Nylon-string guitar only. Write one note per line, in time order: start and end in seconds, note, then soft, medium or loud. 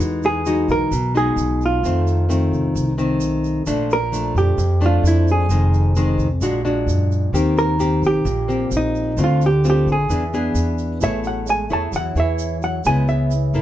0.00 0.89 E3 medium
0.00 0.45 G#3 medium
0.00 0.45 D#4 medium
0.00 0.46 F#4 medium
0.46 0.91 G#3 medium
0.46 0.92 D#4 medium
0.46 0.92 F#4 medium
0.92 1.81 B2 medium
1.15 1.80 G#3 medium
1.15 1.80 D#4 medium
1.15 1.80 F#4 medium
1.85 2.73 F2 soft
1.85 2.26 D#3 medium
1.85 2.26 A3 medium
1.85 2.27 C4 medium
2.29 2.94 D#3 medium
2.29 2.94 A3 medium
2.29 2.95 C4 medium
2.98 3.63 D#3 medium
2.98 3.63 A3 medium
2.98 3.63 C4 medium
3.67 4.56 A#2 medium
3.67 3.96 F3 medium
3.67 3.96 A3 medium
3.67 3.96 D4 medium
4.12 4.58 F3 soft
4.12 4.58 A3 medium
4.12 4.58 D4 medium
4.58 5.48 F2 medium
4.81 5.46 F3 medium
4.81 5.46 A3 medium
4.81 5.47 D4 medium
5.50 6.40 F2 medium
5.50 5.92 D#3 medium
5.50 5.93 G#3 soft
5.50 5.93 C4 medium
5.96 6.27 D#3 medium
5.96 6.27 G#3 medium
5.96 6.28 C4 medium
6.42 7.32 A#2 medium
6.42 6.61 G#3 medium
6.42 6.62 D4 medium
6.42 6.62 F#4 medium
6.65 7.30 G#3 medium
6.65 7.30 D4 medium
6.65 7.30 F#4 medium
7.34 8.23 D#3 medium
7.34 7.76 A#3 medium
7.34 7.76 C4 medium
7.34 7.76 G4 medium
7.79 8.25 A#3 medium
7.79 8.25 C4 medium
7.79 8.26 G4 medium
8.25 9.15 A#2 medium
8.48 9.14 A#3 medium
8.48 9.14 C4 medium
8.48 9.14 G4 medium
9.18 10.07 D3 medium
9.18 9.47 A3 medium
9.18 9.48 C4 medium
9.18 9.48 F4 medium
9.64 9.95 A3 medium
9.64 9.95 C4 medium
9.64 9.95 F4 medium
10.10 10.99 E3 medium
10.10 10.23 B3 medium
10.10 10.24 D4 medium
10.10 10.23 G#4 medium
10.34 10.98 B3 medium
10.34 10.98 D4 medium
10.34 10.99 G#4 medium
11.02 11.91 A3 soft
11.02 11.47 E4 soft
11.02 11.47 G#4 soft
11.02 11.48 C#5 medium
11.70 12.12 E4 medium
11.70 12.13 G#4 medium
11.70 12.13 C#5 medium
11.94 12.83 E3 medium
12.16 12.81 E4 medium
12.16 12.82 G#4 medium
12.16 12.82 C#5 medium
12.86 13.62 C#3 medium
12.86 13.31 B3 soft
12.86 13.31 E4 soft
12.86 13.31 G#4 medium
13.54 13.62 A#3 medium
13.54 13.62 E4 medium
13.54 13.62 A4 medium